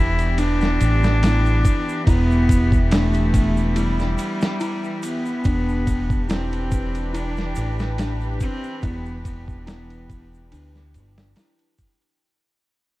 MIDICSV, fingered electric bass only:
0, 0, Header, 1, 2, 480
1, 0, Start_track
1, 0, Key_signature, 1, "minor"
1, 0, Tempo, 845070
1, 1177, Time_signature, 4, 2, 24, 8
1, 7384, End_track
2, 0, Start_track
2, 0, Title_t, "Fingered electric bass"
2, 0, Program_c, 0, 33
2, 0, Note_on_c, 0, 28, 98
2, 436, Note_off_c, 0, 28, 0
2, 461, Note_on_c, 0, 33, 81
2, 918, Note_off_c, 0, 33, 0
2, 1179, Note_on_c, 0, 28, 105
2, 2357, Note_off_c, 0, 28, 0
2, 3099, Note_on_c, 0, 28, 102
2, 4277, Note_off_c, 0, 28, 0
2, 4302, Note_on_c, 0, 33, 74
2, 4758, Note_off_c, 0, 33, 0
2, 5016, Note_on_c, 0, 28, 100
2, 5978, Note_off_c, 0, 28, 0
2, 5981, Note_on_c, 0, 38, 86
2, 6223, Note_on_c, 0, 31, 89
2, 6231, Note_off_c, 0, 38, 0
2, 6434, Note_off_c, 0, 31, 0
2, 7384, End_track
0, 0, End_of_file